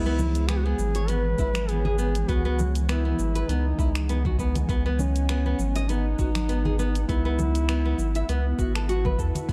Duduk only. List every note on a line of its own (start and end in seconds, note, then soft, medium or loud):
0.00 0.50 E4 loud
0.49 0.58 G#4 loud
0.57 0.66 F#4 medium
0.65 1.11 G#4 loud
1.09 1.71 B4 loud
1.70 2.31 G#4 loud
2.30 2.72 F#4 loud
2.89 3.50 E4 loud
3.49 4.39 D#4 loud
4.99 5.90 C#4 loud
5.89 7.07 D#4 loud
7.08 8.25 E4 loud
8.28 9.15 B3 loud
9.48 9.53 B3 loud